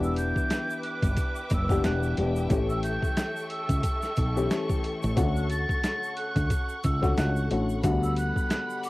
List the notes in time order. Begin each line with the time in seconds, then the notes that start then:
Already playing: E1 E3 B3 D4 G4 B4 E5 G5 D6
0.03 E6, shaker
0.16 G6, closed hi-hat, shaker
0.36 kick, shaker
0.50 snare, closed hi-hat, shaker
0.70 shaker
0.83 F#6, closed hi-hat
1.02 G1, kick, closed hi-hat, shaker
1.17 kick, closed hi-hat, shaker
1.36 shaker
1.50 F#1 E6, kick, closed hi-hat, shaker
1.69 E3 B3 D4 G4, kick, snare, shaker
1.84 E1 F#6, snare, closed hi-hat, shaker
2.03 shaker
2.17 E1 E3 B3 D4 G4, closed hi-hat
2.36 shaker
2.49 A1 E3 A3 C#4 G4 A4 C#6, kick, closed hi-hat, shaker
2.69 E6, shaker
2.83 G6, closed hi-hat, shaker
3.03 kick, shaker
3.17 snare, closed hi-hat, shaker
3.37 shaker
3.49 E6, closed hi-hat
3.69 C#2, kick, closed hi-hat, shaker
3.83 kick, closed hi-hat, shaker
4.02 snare, shaker
4.17 B1, kick, closed hi-hat, shaker
4.36 E3 A3 C#4 G4, shaker
4.51 snare, closed hi-hat, shaker
4.70 kick, shaker
4.84 closed hi-hat
5.03 A1, shaker
5.15 D2 D3 A3 C#4 F#4 F#5, kick, closed hi-hat, shaker
5.35 F#6, shaker
5.50 A6, closed hi-hat, shaker
5.69 kick, shaker
5.84 snare, closed hi-hat, shaker
6.03 shaker
6.16 F#6, closed hi-hat
6.36 D2, kick, closed hi-hat, shaker
6.50 kick, closed hi-hat, shaker
6.69 shaker
6.83 C#2 E6, kick, closed hi-hat, shaker
7.01 D3 A3 C#4 F#4, kick, snare, shaker
7.17 C#2 F#6, snare, closed hi-hat, shaker
7.36 shaker
7.50 A1 D3 A3 C#4 F#4, closed hi-hat
7.69 shaker
7.83 D2 D3 G3 B3 F#4 B5, kick, closed hi-hat, shaker
8.03 E6, shaker
8.16 F#6, closed hi-hat, shaker
8.36 kick, shaker
8.50 snare, closed hi-hat, shaker
8.70 shaker
8.83 D6, open hi-hat, shaker